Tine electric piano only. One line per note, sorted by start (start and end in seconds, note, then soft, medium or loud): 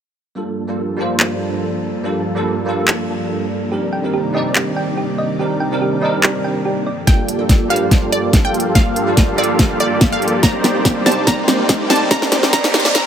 0.35 0.65 G3 medium
0.35 0.65 A#3 medium
0.35 0.66 D4 medium
0.35 0.66 F4 medium
0.35 0.66 A4 medium
0.67 0.96 G3 medium
0.67 0.96 A#3 medium
0.67 0.97 D4 medium
0.67 0.97 F4 medium
0.67 0.97 A4 medium
0.97 2.01 G3 medium
0.97 2.01 A#3 medium
0.97 2.02 D4 medium
0.97 2.02 F4 medium
0.97 2.02 C5 loud
2.03 2.33 G3 medium
2.03 2.33 A#3 medium
2.03 2.33 D4 medium
2.03 2.34 F4 medium
2.03 2.34 A4 medium
2.35 2.63 G3 medium
2.35 2.64 A#3 medium
2.35 2.64 D4 medium
2.35 2.65 F4 medium
2.35 2.65 A4 medium
2.65 3.68 G3 medium
2.65 3.69 A#3 medium
2.65 3.69 D4 medium
2.65 3.70 F4 medium
2.65 3.70 A4 loud
3.71 4.01 G3 medium
3.71 4.01 C4 medium
3.71 4.01 D4 medium
3.71 4.01 D#4 medium
3.71 4.02 A#4 medium
4.03 4.32 G3 medium
4.03 4.32 C4 medium
4.03 4.32 D4 medium
4.03 4.33 D#4 medium
4.03 4.33 A#4 medium
4.33 5.36 G3 medium
4.33 5.37 C4 medium
4.33 5.37 D4 medium
4.33 5.38 D#4 medium
4.37 5.38 D5 loud
5.39 5.69 G3 medium
5.39 5.69 C4 medium
5.39 5.69 D4 medium
5.39 5.69 D#4 medium
5.39 5.70 A#4 medium
5.71 5.99 G3 medium
5.71 6.00 C4 medium
5.71 6.00 D4 medium
5.71 6.01 D#4 medium
5.71 6.01 A#4 loud
6.00 6.84 G3 medium
6.00 6.85 C4 medium
6.00 6.85 D4 medium
6.00 6.86 D#4 medium
6.05 6.86 A#4 loud
7.06 7.36 G3 medium
7.06 7.37 A#3 medium
7.06 7.37 D4 medium
7.06 7.37 F4 medium
7.06 7.37 A4 medium
7.39 7.67 G3 medium
7.39 7.68 A#3 medium
7.39 7.68 D4 medium
7.39 7.68 F4 medium
7.39 7.69 A4 medium
7.68 8.72 G3 medium
7.68 8.72 A#3 medium
7.68 8.73 D4 medium
7.68 8.73 F4 medium
7.68 8.74 C5 loud
8.74 9.04 G3 medium
8.74 9.04 A#3 medium
8.74 9.05 D4 medium
8.74 9.05 F4 medium
8.74 9.05 A4 medium
9.06 9.35 G3 medium
9.06 9.36 A#3 medium
9.06 9.36 D4 medium
9.06 9.36 F4 medium
9.06 9.36 A4 loud
9.36 10.40 G3 loud
9.36 10.40 A#3 medium
9.36 10.41 D4 medium
9.36 10.41 F4 medium
9.40 10.42 A4 loud
10.42 10.72 G3 medium
10.42 10.72 C4 medium
10.42 10.73 D4 medium
10.42 10.73 D#4 medium
10.42 10.73 A#4 medium
10.74 11.03 G3 medium
10.74 11.03 C4 medium
10.74 11.04 D4 medium
10.74 11.04 D#4 medium
10.74 11.04 A#4 medium
11.04 11.24 G3 medium
11.04 11.25 C4 medium
11.04 11.25 D4 medium
11.04 11.26 D#4 medium
11.08 11.26 D5 loud
11.26 11.56 G3 medium
11.26 11.56 C4 medium
11.26 11.56 D4 medium
11.26 11.57 D#4 medium
11.26 11.57 A#4 medium
11.58 11.87 G3 medium
11.58 11.87 C4 medium
11.58 11.88 D4 medium
11.58 11.88 D#4 medium
11.58 11.88 A#4 medium
11.88 12.08 G3 medium
11.88 12.09 C4 medium
11.88 12.09 D4 medium
11.88 12.10 D#4 medium
11.88 12.10 D5 loud
12.10 12.40 G3 medium
12.10 12.40 C4 medium
12.10 12.40 D4 medium
12.10 12.41 D#4 medium
12.10 12.41 A#4 medium
12.42 12.51 G3 medium
12.42 12.51 C4 medium
12.42 12.51 D4 medium
12.42 12.52 D#4 medium
12.42 12.52 A#4 medium
12.52 12.82 G3 medium
12.52 12.82 C4 medium
12.52 12.82 D4 medium
12.52 12.83 D#4 medium
12.52 12.83 A#4 medium
12.84 12.93 G3 medium
12.84 12.93 C4 medium
12.84 12.93 D4 medium
12.84 12.94 D#4 medium
12.84 12.94 A#4 medium
12.94 13.06 G3 medium
12.94 13.06 C4 medium
12.94 13.06 D4 medium
12.94 13.06 D#4 medium
12.94 13.06 A#4 medium